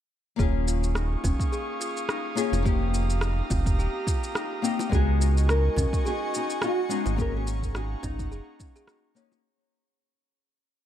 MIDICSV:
0, 0, Header, 1, 7, 480
1, 0, Start_track
1, 0, Tempo, 566038
1, 332, Time_signature, 4, 2, 24, 8
1, 9203, End_track
2, 0, Start_track
2, 0, Title_t, "Analog synth pad"
2, 0, Program_c, 0, 89
2, 329, Note_on_c, 0, 77, 71
2, 330, Note_on_c, 0, 85, 67
2, 330, Note_on_c, 0, 87, 84
2, 331, Note_on_c, 0, 68, 71
2, 2231, Note_off_c, 0, 85, 0
2, 2232, Note_off_c, 0, 68, 0
2, 2252, Note_on_c, 0, 67, 78
2, 2255, Note_on_c, 0, 82, 70
2, 4136, Note_off_c, 0, 77, 0
2, 4137, Note_off_c, 0, 87, 0
2, 4152, Note_off_c, 0, 67, 0
2, 4154, Note_off_c, 0, 82, 0
2, 4173, Note_on_c, 0, 80, 70
2, 4174, Note_on_c, 0, 75, 70
2, 4174, Note_on_c, 0, 85, 86
2, 4177, Note_on_c, 0, 66, 81
2, 6073, Note_off_c, 0, 75, 0
2, 6073, Note_off_c, 0, 80, 0
2, 6075, Note_off_c, 0, 66, 0
2, 6090, Note_on_c, 0, 68, 75
2, 6091, Note_on_c, 0, 82, 74
2, 6093, Note_on_c, 0, 78, 71
2, 7979, Note_off_c, 0, 85, 0
2, 7991, Note_off_c, 0, 68, 0
2, 7992, Note_off_c, 0, 82, 0
2, 7993, Note_off_c, 0, 78, 0
2, 9203, End_track
3, 0, Start_track
3, 0, Title_t, "Nylon-string guitar"
3, 0, Program_c, 1, 24
3, 4194, Note_on_c, 1, 68, 104
3, 4661, Note_off_c, 1, 68, 0
3, 4665, Note_on_c, 1, 70, 106
3, 5150, Note_off_c, 1, 70, 0
3, 5153, Note_on_c, 1, 68, 94
3, 5366, Note_off_c, 1, 68, 0
3, 5395, Note_on_c, 1, 63, 84
3, 5629, Note_on_c, 1, 66, 97
3, 5630, Note_off_c, 1, 63, 0
3, 5977, Note_off_c, 1, 66, 0
3, 5977, Note_on_c, 1, 65, 97
3, 6109, Note_off_c, 1, 65, 0
3, 6112, Note_on_c, 1, 70, 107
3, 6239, Note_off_c, 1, 70, 0
3, 6246, Note_on_c, 1, 68, 87
3, 6574, Note_off_c, 1, 68, 0
3, 6584, Note_on_c, 1, 68, 100
3, 6820, Note_on_c, 1, 63, 83
3, 6825, Note_off_c, 1, 68, 0
3, 7742, Note_off_c, 1, 63, 0
3, 9203, End_track
4, 0, Start_track
4, 0, Title_t, "Kalimba"
4, 0, Program_c, 2, 108
4, 331, Note_on_c, 2, 68, 74
4, 458, Note_off_c, 2, 68, 0
4, 572, Note_on_c, 2, 65, 64
4, 692, Note_off_c, 2, 65, 0
4, 814, Note_on_c, 2, 63, 81
4, 933, Note_off_c, 2, 63, 0
4, 1050, Note_on_c, 2, 61, 89
4, 1178, Note_off_c, 2, 61, 0
4, 1292, Note_on_c, 2, 68, 73
4, 1419, Note_off_c, 2, 68, 0
4, 1531, Note_on_c, 2, 65, 70
4, 1652, Note_off_c, 2, 65, 0
4, 1774, Note_on_c, 2, 63, 83
4, 1893, Note_off_c, 2, 63, 0
4, 2011, Note_on_c, 2, 61, 88
4, 2138, Note_off_c, 2, 61, 0
4, 2252, Note_on_c, 2, 67, 78
4, 2379, Note_off_c, 2, 67, 0
4, 2488, Note_on_c, 2, 65, 72
4, 2610, Note_off_c, 2, 65, 0
4, 2732, Note_on_c, 2, 63, 77
4, 2852, Note_off_c, 2, 63, 0
4, 2972, Note_on_c, 2, 60, 94
4, 3099, Note_off_c, 2, 60, 0
4, 3212, Note_on_c, 2, 67, 78
4, 3339, Note_off_c, 2, 67, 0
4, 3453, Note_on_c, 2, 65, 70
4, 3573, Note_off_c, 2, 65, 0
4, 3691, Note_on_c, 2, 63, 80
4, 3812, Note_off_c, 2, 63, 0
4, 3934, Note_on_c, 2, 60, 98
4, 4060, Note_off_c, 2, 60, 0
4, 4173, Note_on_c, 2, 68, 83
4, 4299, Note_off_c, 2, 68, 0
4, 4415, Note_on_c, 2, 66, 71
4, 4534, Note_off_c, 2, 66, 0
4, 4657, Note_on_c, 2, 63, 84
4, 4774, Note_off_c, 2, 63, 0
4, 4893, Note_on_c, 2, 61, 93
4, 5019, Note_off_c, 2, 61, 0
4, 5133, Note_on_c, 2, 68, 79
4, 5260, Note_off_c, 2, 68, 0
4, 5373, Note_on_c, 2, 66, 70
4, 5493, Note_off_c, 2, 66, 0
4, 5612, Note_on_c, 2, 63, 85
4, 5732, Note_off_c, 2, 63, 0
4, 5850, Note_on_c, 2, 61, 96
4, 5978, Note_off_c, 2, 61, 0
4, 6091, Note_on_c, 2, 68, 75
4, 6218, Note_off_c, 2, 68, 0
4, 6331, Note_on_c, 2, 66, 73
4, 6452, Note_off_c, 2, 66, 0
4, 6570, Note_on_c, 2, 63, 83
4, 6691, Note_off_c, 2, 63, 0
4, 6809, Note_on_c, 2, 61, 105
4, 6937, Note_off_c, 2, 61, 0
4, 7052, Note_on_c, 2, 68, 79
4, 7179, Note_off_c, 2, 68, 0
4, 7290, Note_on_c, 2, 61, 75
4, 7411, Note_off_c, 2, 61, 0
4, 7426, Note_on_c, 2, 68, 96
4, 7521, Note_off_c, 2, 68, 0
4, 7533, Note_on_c, 2, 66, 84
4, 7653, Note_off_c, 2, 66, 0
4, 7771, Note_on_c, 2, 73, 91
4, 7891, Note_off_c, 2, 73, 0
4, 9203, End_track
5, 0, Start_track
5, 0, Title_t, "Nylon-string guitar"
5, 0, Program_c, 3, 24
5, 307, Note_on_c, 3, 58, 83
5, 321, Note_on_c, 3, 61, 76
5, 336, Note_on_c, 3, 65, 74
5, 348, Note_on_c, 3, 68, 83
5, 1973, Note_off_c, 3, 58, 0
5, 1981, Note_off_c, 3, 61, 0
5, 1988, Note_off_c, 3, 65, 0
5, 1994, Note_off_c, 3, 68, 0
5, 1995, Note_on_c, 3, 58, 86
5, 2003, Note_on_c, 3, 61, 81
5, 2008, Note_on_c, 3, 65, 77
5, 2016, Note_on_c, 3, 68, 99
5, 2218, Note_off_c, 3, 58, 0
5, 2222, Note_off_c, 3, 61, 0
5, 2224, Note_off_c, 3, 65, 0
5, 2228, Note_off_c, 3, 68, 0
5, 2228, Note_on_c, 3, 58, 87
5, 2241, Note_on_c, 3, 60, 75
5, 2254, Note_on_c, 3, 63, 77
5, 2268, Note_on_c, 3, 67, 85
5, 3894, Note_off_c, 3, 58, 0
5, 3901, Note_off_c, 3, 60, 0
5, 3907, Note_off_c, 3, 63, 0
5, 3914, Note_off_c, 3, 67, 0
5, 3918, Note_on_c, 3, 58, 91
5, 3927, Note_on_c, 3, 60, 81
5, 3932, Note_on_c, 3, 63, 82
5, 3940, Note_on_c, 3, 67, 103
5, 4139, Note_off_c, 3, 58, 0
5, 4144, Note_off_c, 3, 60, 0
5, 4146, Note_off_c, 3, 63, 0
5, 4149, Note_on_c, 3, 56, 90
5, 4150, Note_off_c, 3, 67, 0
5, 4164, Note_on_c, 3, 59, 78
5, 4177, Note_on_c, 3, 63, 77
5, 4190, Note_on_c, 3, 66, 91
5, 5815, Note_off_c, 3, 56, 0
5, 5822, Note_off_c, 3, 59, 0
5, 5828, Note_off_c, 3, 63, 0
5, 5835, Note_off_c, 3, 66, 0
5, 5843, Note_on_c, 3, 56, 91
5, 5849, Note_on_c, 3, 59, 85
5, 5858, Note_on_c, 3, 63, 86
5, 5862, Note_on_c, 3, 66, 106
5, 6062, Note_off_c, 3, 56, 0
5, 6065, Note_off_c, 3, 59, 0
5, 6069, Note_off_c, 3, 63, 0
5, 6071, Note_off_c, 3, 66, 0
5, 6072, Note_on_c, 3, 58, 83
5, 6084, Note_on_c, 3, 61, 82
5, 6099, Note_on_c, 3, 63, 77
5, 6114, Note_on_c, 3, 66, 98
5, 7736, Note_off_c, 3, 58, 0
5, 7742, Note_off_c, 3, 61, 0
5, 7750, Note_off_c, 3, 63, 0
5, 7757, Note_off_c, 3, 66, 0
5, 7757, Note_on_c, 3, 58, 94
5, 7766, Note_on_c, 3, 61, 88
5, 7770, Note_on_c, 3, 63, 87
5, 7778, Note_on_c, 3, 66, 104
5, 7979, Note_off_c, 3, 58, 0
5, 7983, Note_off_c, 3, 61, 0
5, 7985, Note_off_c, 3, 63, 0
5, 7989, Note_off_c, 3, 66, 0
5, 9203, End_track
6, 0, Start_track
6, 0, Title_t, "Analog synth bass"
6, 0, Program_c, 4, 38
6, 330, Note_on_c, 4, 27, 91
6, 986, Note_off_c, 4, 27, 0
6, 1049, Note_on_c, 4, 27, 83
6, 1133, Note_off_c, 4, 27, 0
6, 2139, Note_on_c, 4, 29, 85
6, 2903, Note_off_c, 4, 29, 0
6, 2971, Note_on_c, 4, 29, 92
6, 3212, Note_on_c, 4, 27, 76
6, 3224, Note_off_c, 4, 29, 0
6, 3294, Note_off_c, 4, 27, 0
6, 4174, Note_on_c, 4, 37, 101
6, 4828, Note_off_c, 4, 37, 0
6, 4892, Note_on_c, 4, 37, 93
6, 4974, Note_off_c, 4, 37, 0
6, 5988, Note_on_c, 4, 32, 83
6, 6748, Note_off_c, 4, 32, 0
6, 6811, Note_on_c, 4, 32, 97
6, 7048, Note_on_c, 4, 30, 77
6, 7060, Note_off_c, 4, 32, 0
6, 7132, Note_off_c, 4, 30, 0
6, 9203, End_track
7, 0, Start_track
7, 0, Title_t, "Drums"
7, 331, Note_on_c, 9, 36, 113
7, 335, Note_on_c, 9, 82, 31
7, 416, Note_off_c, 9, 36, 0
7, 420, Note_off_c, 9, 82, 0
7, 576, Note_on_c, 9, 82, 68
7, 661, Note_off_c, 9, 82, 0
7, 710, Note_on_c, 9, 82, 43
7, 794, Note_off_c, 9, 82, 0
7, 808, Note_on_c, 9, 37, 94
7, 816, Note_on_c, 9, 82, 29
7, 893, Note_off_c, 9, 37, 0
7, 901, Note_off_c, 9, 82, 0
7, 1050, Note_on_c, 9, 36, 96
7, 1052, Note_on_c, 9, 60, 68
7, 1056, Note_on_c, 9, 82, 73
7, 1135, Note_off_c, 9, 36, 0
7, 1137, Note_off_c, 9, 60, 0
7, 1141, Note_off_c, 9, 82, 0
7, 1183, Note_on_c, 9, 36, 98
7, 1193, Note_on_c, 9, 82, 39
7, 1268, Note_off_c, 9, 36, 0
7, 1277, Note_off_c, 9, 82, 0
7, 1296, Note_on_c, 9, 82, 29
7, 1381, Note_off_c, 9, 82, 0
7, 1537, Note_on_c, 9, 82, 72
7, 1621, Note_off_c, 9, 82, 0
7, 1670, Note_on_c, 9, 82, 38
7, 1755, Note_off_c, 9, 82, 0
7, 1771, Note_on_c, 9, 37, 94
7, 1779, Note_on_c, 9, 82, 29
7, 1856, Note_off_c, 9, 37, 0
7, 1863, Note_off_c, 9, 82, 0
7, 2013, Note_on_c, 9, 82, 76
7, 2098, Note_off_c, 9, 82, 0
7, 2146, Note_on_c, 9, 60, 65
7, 2149, Note_on_c, 9, 82, 40
7, 2231, Note_off_c, 9, 60, 0
7, 2234, Note_off_c, 9, 82, 0
7, 2251, Note_on_c, 9, 36, 116
7, 2255, Note_on_c, 9, 82, 31
7, 2335, Note_off_c, 9, 36, 0
7, 2340, Note_off_c, 9, 82, 0
7, 2495, Note_on_c, 9, 82, 73
7, 2580, Note_off_c, 9, 82, 0
7, 2628, Note_on_c, 9, 82, 45
7, 2713, Note_off_c, 9, 82, 0
7, 2724, Note_on_c, 9, 37, 99
7, 2732, Note_on_c, 9, 82, 34
7, 2809, Note_off_c, 9, 37, 0
7, 2817, Note_off_c, 9, 82, 0
7, 2971, Note_on_c, 9, 36, 106
7, 2973, Note_on_c, 9, 82, 77
7, 2977, Note_on_c, 9, 60, 63
7, 3056, Note_off_c, 9, 36, 0
7, 3058, Note_off_c, 9, 82, 0
7, 3062, Note_off_c, 9, 60, 0
7, 3105, Note_on_c, 9, 36, 106
7, 3109, Note_on_c, 9, 82, 45
7, 3190, Note_off_c, 9, 36, 0
7, 3194, Note_off_c, 9, 82, 0
7, 3219, Note_on_c, 9, 82, 30
7, 3303, Note_off_c, 9, 82, 0
7, 3451, Note_on_c, 9, 36, 102
7, 3458, Note_on_c, 9, 82, 76
7, 3536, Note_off_c, 9, 36, 0
7, 3543, Note_off_c, 9, 82, 0
7, 3592, Note_on_c, 9, 82, 43
7, 3677, Note_off_c, 9, 82, 0
7, 3691, Note_on_c, 9, 37, 94
7, 3699, Note_on_c, 9, 82, 30
7, 3776, Note_off_c, 9, 37, 0
7, 3784, Note_off_c, 9, 82, 0
7, 3939, Note_on_c, 9, 82, 75
7, 4023, Note_off_c, 9, 82, 0
7, 4065, Note_on_c, 9, 60, 67
7, 4074, Note_on_c, 9, 82, 44
7, 4150, Note_off_c, 9, 60, 0
7, 4158, Note_off_c, 9, 82, 0
7, 4172, Note_on_c, 9, 36, 118
7, 4181, Note_on_c, 9, 82, 31
7, 4257, Note_off_c, 9, 36, 0
7, 4266, Note_off_c, 9, 82, 0
7, 4422, Note_on_c, 9, 82, 78
7, 4507, Note_off_c, 9, 82, 0
7, 4558, Note_on_c, 9, 82, 46
7, 4642, Note_off_c, 9, 82, 0
7, 4655, Note_on_c, 9, 37, 100
7, 4663, Note_on_c, 9, 82, 34
7, 4740, Note_off_c, 9, 37, 0
7, 4748, Note_off_c, 9, 82, 0
7, 4888, Note_on_c, 9, 60, 63
7, 4894, Note_on_c, 9, 36, 97
7, 4902, Note_on_c, 9, 82, 77
7, 4973, Note_off_c, 9, 60, 0
7, 4979, Note_off_c, 9, 36, 0
7, 4987, Note_off_c, 9, 82, 0
7, 5028, Note_on_c, 9, 36, 107
7, 5034, Note_on_c, 9, 82, 44
7, 5113, Note_off_c, 9, 36, 0
7, 5119, Note_off_c, 9, 82, 0
7, 5141, Note_on_c, 9, 82, 32
7, 5225, Note_off_c, 9, 82, 0
7, 5381, Note_on_c, 9, 82, 83
7, 5466, Note_off_c, 9, 82, 0
7, 5512, Note_on_c, 9, 82, 45
7, 5597, Note_off_c, 9, 82, 0
7, 5611, Note_on_c, 9, 37, 99
7, 5619, Note_on_c, 9, 82, 32
7, 5695, Note_off_c, 9, 37, 0
7, 5703, Note_off_c, 9, 82, 0
7, 5857, Note_on_c, 9, 82, 78
7, 5942, Note_off_c, 9, 82, 0
7, 5984, Note_on_c, 9, 60, 69
7, 5990, Note_on_c, 9, 82, 44
7, 6069, Note_off_c, 9, 60, 0
7, 6074, Note_off_c, 9, 82, 0
7, 6093, Note_on_c, 9, 36, 115
7, 6098, Note_on_c, 9, 82, 34
7, 6178, Note_off_c, 9, 36, 0
7, 6183, Note_off_c, 9, 82, 0
7, 6338, Note_on_c, 9, 82, 76
7, 6422, Note_off_c, 9, 82, 0
7, 6467, Note_on_c, 9, 36, 58
7, 6473, Note_on_c, 9, 82, 46
7, 6551, Note_off_c, 9, 36, 0
7, 6558, Note_off_c, 9, 82, 0
7, 6570, Note_on_c, 9, 37, 97
7, 6578, Note_on_c, 9, 82, 32
7, 6655, Note_off_c, 9, 37, 0
7, 6663, Note_off_c, 9, 82, 0
7, 6810, Note_on_c, 9, 60, 66
7, 6812, Note_on_c, 9, 36, 105
7, 6815, Note_on_c, 9, 82, 78
7, 6895, Note_off_c, 9, 60, 0
7, 6896, Note_off_c, 9, 36, 0
7, 6899, Note_off_c, 9, 82, 0
7, 6946, Note_on_c, 9, 36, 103
7, 6949, Note_on_c, 9, 82, 44
7, 7031, Note_off_c, 9, 36, 0
7, 7034, Note_off_c, 9, 82, 0
7, 7056, Note_on_c, 9, 82, 31
7, 7141, Note_off_c, 9, 82, 0
7, 7292, Note_on_c, 9, 36, 100
7, 7294, Note_on_c, 9, 82, 83
7, 7377, Note_off_c, 9, 36, 0
7, 7379, Note_off_c, 9, 82, 0
7, 7431, Note_on_c, 9, 82, 43
7, 7515, Note_off_c, 9, 82, 0
7, 7526, Note_on_c, 9, 37, 92
7, 7534, Note_on_c, 9, 82, 33
7, 7611, Note_off_c, 9, 37, 0
7, 7619, Note_off_c, 9, 82, 0
7, 7772, Note_on_c, 9, 82, 78
7, 7856, Note_off_c, 9, 82, 0
7, 7901, Note_on_c, 9, 60, 62
7, 7907, Note_on_c, 9, 82, 46
7, 7986, Note_off_c, 9, 60, 0
7, 7992, Note_off_c, 9, 82, 0
7, 9203, End_track
0, 0, End_of_file